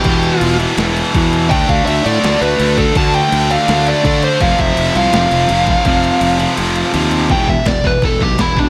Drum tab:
CC |xxxxxxxx|xxxxxxxx|xxxxxxxx|xxxxxxxx|
SD |----o---|----o---|----o---|----o---|
BD |o-----o-|oo-----o|o-----o-|oo-----o|

CC |xxxxxxxx|x-x-x-x-|
SD |--------|--o---o-|
BD |o-------|oooooooo|